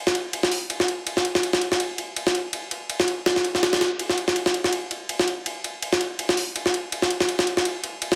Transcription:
0.07 snare soft
0.15 ride medium
0.33 ride medium
0.43 snare soft
0.52 open hi-hat medium
0.70 ride medium
0.80 snare soft
0.88 ride medium
1.07 ride medium
1.17 snare soft
1.25 ride medium
1.35 snare soft
1.43 ride medium
1.53 snare soft
1.61 ride medium
1.72 snare soft
1.80 ride medium
1.98 ride medium
2.16 ride medium
2.27 snare soft
2.35 ride medium
2.53 ride medium
2.71 ride medium
2.90 ride medium
3.00 snare medium
3.08 ride medium
3.26 snare loud
3.26 ride medium
3.36 snare soft
3.45 ride medium
3.55 snare soft
3.63 snare medium
3.63 ride medium
3.73 snare medium
3.73 ride medium
3.81 snare medium
3.81 ride medium
3.99 ride medium
4.09 snare soft
4.18 ride medium
4.28 snare soft
4.36 ride medium
4.46 snare soft
4.54 ride medium
4.64 snare soft
4.73 ride medium
4.91 ride medium
5.09 ride medium
5.19 snare soft
5.28 ride medium
5.46 ride medium
5.64 ride medium
5.82 ride medium
5.93 snare soft
6.01 ride medium
6.19 ride medium
6.29 snare soft
6.37 open hi-hat medium
6.56 ride medium
6.66 snare soft
6.74 ride medium
6.92 ride medium
7.02 snare soft
7.10 ride medium
7.20 snare soft
7.29 ride medium
7.39 snare medium
7.47 ride medium
7.57 snare soft
7.65 ride medium
7.84 ride medium
8.02 ride medium
8.12 snare soft

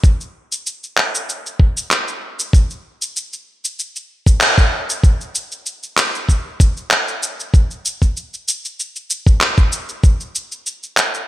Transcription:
0.04 kick loud
0.04 shaker soft
0.21 shaker soft
0.52 shaker medium
0.66 shaker medium
0.83 shaker soft
0.97 clap medium
1.15 shaker medium
1.29 shaker soft
1.46 shaker soft
1.60 kick medium
1.77 shaker medium
1.91 clap medium
1.91 shaker medium
2.08 shaker soft
2.39 shaker medium
2.53 kick loud
2.53 shaker soft
2.70 shaker soft
3.02 shaker medium
3.16 shaker medium
3.33 shaker soft
3.65 shaker medium
3.79 shaker medium
3.96 shaker soft
4.26 kick medium
4.26 shaker medium
4.41 clap medium
4.41 shaker medium
4.58 kick loud
4.58 shaker soft
4.90 shaker medium
5.04 kick loud
5.04 shaker soft
5.21 shaker soft
5.35 shaker medium
5.52 shaker soft
5.66 shaker soft
5.83 shaker soft
5.97 clap medium
5.97 shaker medium
6.15 shaker soft
6.29 kick medium
6.29 shaker soft
6.60 kick loud
6.60 shaker medium
6.77 shaker soft
6.91 clap medium
6.91 shaker soft
7.08 shaker soft
7.23 shaker medium
7.40 shaker soft
7.54 kick loud
7.54 shaker soft
7.71 shaker soft
7.85 shaker medium
8.02 kick medium
8.02 shaker soft
8.17 shaker soft
8.34 shaker soft
8.48 shaker medium
8.65 shaker soft
8.80 shaker soft
8.96 shaker soft
9.10 shaker medium
9.27 kick loud
9.27 shaker soft
9.41 clap medium
9.41 shaker soft
9.58 kick loud
9.58 shaker soft
9.72 shaker medium
9.89 shaker soft
10.04 kick loud
10.04 shaker soft
10.20 shaker soft
10.35 shaker medium
10.52 shaker soft
10.66 shaker soft
10.83 shaker soft
10.97 clap medium
10.97 shaker medium
11.14 shaker soft

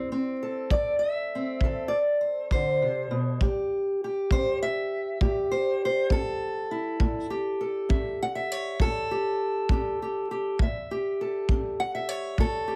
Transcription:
0.00 0.36 D3 medium
0.00 0.11 C4 soft
0.12 1.32 C4 soft
0.43 1.64 A4 soft
0.70 1.27 F#3 medium
0.70 0.99 D5 medium
0.70 kick medium
0.99 1.88 E5 medium
1.35 3.44 C4 soft
1.61 2.17 D3 medium
1.61 kick medium
1.65 3.42 A4 soft
1.88 2.20 D5 medium
2.21 2.51 C5 medium
2.51 2.83 D3 medium
2.51 3.42 C5 medium
2.51 kick medium
2.82 3.10 C3 medium
3.11 3.41 B2 medium
3.41 3.96 A2 medium
3.41 4.04 G4 soft
3.41 kick medium
4.04 5.22 G4 soft
4.31 4.87 C#4 medium
4.31 4.62 C5 loud
4.31 kick medium
4.63 5.51 E5 medium
5.21 5.76 A2 medium
5.21 7.04 G4 soft
5.21 kick medium
5.51 5.82 C5 medium
5.85 6.12 C5 medium
6.10 6.65 C#4 medium
6.10 7.59 A4 medium
6.10 kick medium
6.71 7.30 E4 soft
7.00 7.55 A2 medium
7.00 kick medium
7.30 9.10 G4 soft
7.61 8.52 A4 soft
7.89 8.44 C#4 medium
7.89 8.22 E5 soft
7.89 kick medium
8.22 8.35 F#5 medium
8.35 8.81 E5 medium
8.52 9.41 C#5 medium
8.80 9.35 A2 medium
8.80 10.60 A4 loud
8.80 kick medium
9.11 9.70 G4 soft
9.69 10.24 C#4 medium
9.69 10.01 G4 soft
9.69 kick medium
10.02 10.30 G4 soft
10.31 10.57 G4 soft
10.59 11.14 A2 medium
10.59 11.79 E5 soft
10.59 kick medium
10.91 12.66 G4 soft
11.21 12.09 A4 soft
11.49 12.04 C#4 medium
11.49 kick medium
11.80 11.94 F#5 medium
11.95 12.39 E5 medium
12.09 12.76 C#5 medium
12.38 12.76 A2 medium
12.38 12.76 A4 medium
12.38 kick medium
12.68 12.76 G4 soft

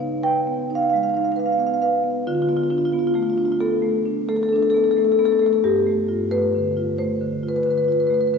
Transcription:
0.00 2.21 C#3 medium
0.00 0.14 B3 soft
0.00 0.36 D#4 medium
0.00 0.19 F5 medium
0.23 0.59 B4 medium
0.23 0.72 G5 medium
0.47 0.82 B3 soft
0.70 1.05 D#4 soft
0.75 0.82 F5 medium
0.82 0.90 F5 medium
0.90 1.28 G#3 soft
0.90 0.96 F5 medium
0.96 1.03 F5 medium
1.03 1.09 F5 medium
1.09 1.17 F5 medium
1.14 1.50 D#4 medium
1.14 1.25 F5 medium
1.25 1.32 F5 medium
1.32 1.39 F5 medium
1.36 1.72 B4 medium
1.36 1.46 F5 medium
1.46 1.52 F5 medium
1.52 1.59 F5 medium
1.58 1.94 B3 medium
1.58 1.67 F5 medium
1.67 1.74 F5 medium
1.74 1.82 F5 medium
1.82 2.18 B4 medium
1.82 1.89 F5 medium
2.04 2.26 B3 soft
2.27 5.60 D3 medium
2.27 2.35 F4 medium
2.35 2.42 F4 medium
2.42 2.49 F4 medium
2.48 2.85 B3 medium
2.48 2.56 F4 medium
2.56 2.64 F4 medium
2.64 2.70 F4 medium
2.70 3.07 D4 medium
2.70 2.78 F4 medium
2.78 2.85 F4 medium
2.85 2.92 F4 medium
2.92 3.30 B3 medium
2.92 2.99 F4 medium
2.99 3.07 F4 medium
3.07 3.14 F4 medium
3.14 3.52 A3 medium
3.14 3.23 F4 medium
3.23 3.30 F4 medium
3.30 3.38 F4 medium
3.38 3.74 D4 medium
3.38 3.45 F4 medium
3.45 3.52 F4 medium
3.52 3.58 F4 medium
3.60 3.97 B3 medium
3.60 4.26 A4 medium
3.82 4.19 A3 medium
4.06 4.42 D4 soft
4.29 4.65 A3 medium
4.29 4.36 A4 medium
4.36 4.43 A4 medium
4.43 4.49 A4 medium
4.49 4.88 D4 medium
4.49 4.56 A4 medium
4.56 4.63 A4 medium
4.63 4.70 A4 medium
4.70 4.77 A4 medium
4.74 5.10 B3 soft
4.74 4.84 A4 medium
4.84 4.91 A4 medium
4.91 4.98 A4 medium
4.97 5.32 A3 medium
4.97 5.05 A4 medium
5.05 5.12 A4 medium
5.12 5.19 A4 medium
5.19 5.55 B3 medium
5.19 5.25 A4 medium
5.25 5.32 A4 medium
5.32 5.39 A4 medium
5.39 5.64 A3 medium
5.39 5.46 A4 medium
5.46 5.53 A4 medium
5.53 5.59 A4 medium
5.64 8.38 G2 medium
5.64 6.29 G4 medium
5.87 6.23 A3 medium
6.09 6.45 F4 medium
6.31 6.67 A3 soft
6.31 6.96 B4 medium
6.55 6.91 D3 medium
6.77 7.13 F4 medium
6.98 7.35 A3 medium
6.98 7.48 C5 medium
7.21 7.58 D3 medium
7.43 7.80 F4 soft
7.49 7.56 B4 medium
7.56 7.63 B4 medium
7.63 8.03 D3 medium
7.63 7.71 B4 medium
7.71 7.78 B4 medium
7.78 7.84 B4 medium
7.84 8.25 F4 medium
7.84 7.92 B4 medium
7.92 8.00 B4 medium
8.00 8.07 B4 medium
8.07 8.38 A3 soft
8.07 8.14 B4 medium
8.14 8.21 B4 medium
8.21 8.27 B4 medium
8.27 8.34 B4 medium
8.34 8.38 D3 medium
8.34 8.38 B4 medium

